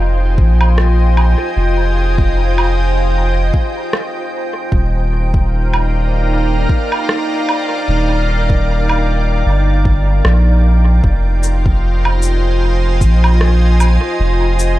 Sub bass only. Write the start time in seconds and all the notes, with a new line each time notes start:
Already playing: F1
0.38 A#1
1.57 F1
4.72 D#1
7.88 D#1
9.46 G1
10.25 A#1
11.04 F1
13.01 A#1
14.20 F1